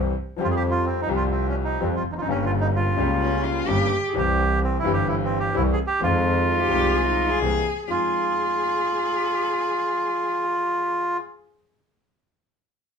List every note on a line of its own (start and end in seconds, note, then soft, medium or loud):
0.00 0.11 C2 medium
0.00 0.11 C3 medium
0.00 0.11 E3 medium
0.00 0.11 G3 medium
0.00 0.11 C4 medium
0.00 0.11 G4 medium
0.36 1.06 F2 loud
0.36 1.06 F2 medium
0.36 0.38 F3 medium
0.36 1.05 F3 medium
0.36 1.06 G3 medium
0.36 1.07 C4 medium
0.41 0.48 F4 loud
0.41 1.07 G4 medium
0.51 0.55 G#4 medium
0.56 0.63 G4 loud
0.71 0.85 F4 loud
0.85 1.01 C4 medium
1.01 1.09 D#4 loud
1.06 1.77 C2 medium
1.06 1.77 C3 medium
1.06 1.76 F3 medium
1.06 1.76 G3 medium
1.06 1.77 C4 medium
1.11 1.78 G4 medium
1.16 1.23 F4 loud
1.31 1.47 C4 medium
1.48 1.56 C#4 medium
1.64 1.81 D#4 medium
1.80 2.00 F2 medium
1.80 2.01 F2 medium
1.80 2.01 F3 medium
1.80 2.01 G3 medium
1.80 1.88 C4 medium
1.80 2.01 C4 medium
1.80 2.01 G4 medium
1.96 2.03 F4 medium
2.03 2.26 F1 medium
2.11 2.16 E2 medium
2.11 2.14 D#4 loud
2.17 2.22 F2 medium
2.17 2.21 F4 medium
2.21 2.28 F#2 medium
2.21 2.28 D#4 medium
2.26 2.94 G1 loud
2.26 2.95 G1 medium
2.26 2.95 G2 medium
2.26 2.94 C#3 medium
2.26 2.95 G3 medium
2.26 2.95 A#3 medium
2.26 2.45 C#4 loud
2.31 2.96 G4 medium
2.45 2.52 F4 medium
2.60 2.67 D#4 medium
2.76 3.41 F4 medium
2.96 3.64 C#2 loud
2.96 3.65 C#2 medium
2.96 2.97 C#3 medium
2.96 3.65 C#3 medium
2.96 3.65 G3 medium
2.96 3.65 A#3 medium
3.00 3.66 G4 medium
3.21 3.45 C#4 medium
3.44 3.68 F4 medium
3.67 3.87 G1 loud
3.67 3.88 G1 medium
3.67 3.88 G2 medium
3.67 3.88 C#3 medium
3.67 3.88 G3 medium
3.67 3.88 A#3 medium
3.67 4.03 G4 loud
3.67 3.88 G4 medium
4.08 4.15 G#4 medium
4.13 4.81 C2 loud
4.13 4.81 C2 medium
4.13 4.82 C3 medium
4.13 4.80 E3 medium
4.13 4.81 G3 medium
4.13 4.82 C4 medium
4.13 4.82 G4 medium
4.17 4.60 G4 loud
4.64 4.77 C4 medium
4.79 5.50 E3 medium
4.79 4.93 E4 loud
4.84 5.51 G1 loud
4.84 5.51 G2 loud
4.84 5.51 G3 medium
4.84 5.51 C4 medium
4.84 5.52 G4 medium
4.93 5.07 G4 loud
5.09 5.15 E4 medium
5.24 5.38 C4 medium
5.40 5.55 G4 loud
5.54 5.74 C2 loud
5.54 5.74 C2 medium
5.54 5.74 C3 medium
5.54 5.74 E3 medium
5.54 5.74 G3 medium
5.54 5.74 C4 medium
5.54 5.63 E4 loud
5.54 5.74 G4 medium
5.72 5.79 G#4 loud
5.87 6.01 G4 loud
5.99 6.68 F2 loud
5.99 6.68 F2 medium
5.99 6.67 D#3 medium
5.99 6.68 F3 medium
5.99 6.67 G#3 medium
5.99 6.68 C4 medium
5.99 7.39 F4 loud
6.04 6.69 F4 medium
6.49 6.61 D#4 medium
6.59 6.97 G4 loud
6.69 7.38 C2 loud
6.69 7.38 C3 medium
6.69 7.37 D#3 medium
6.69 7.38 G#3 medium
6.69 7.39 C4 medium
6.69 7.39 F4 medium
6.95 7.07 G#4 loud
7.07 7.31 D#4 medium
7.29 7.87 G#4 loud
7.40 7.61 C2 loud
7.40 7.62 C2 medium
7.40 7.62 C3 medium
7.40 7.62 E3 medium
7.40 7.62 A#3 medium
7.40 7.62 C4 medium
7.40 7.62 G4 medium
7.87 11.14 F2 medium
7.87 8.08 F2 medium
7.87 11.15 G#3 soft
7.87 11.15 D#4 medium
7.87 11.15 F4 medium
7.87 11.17 F4 loud
7.87 11.14 G#4 medium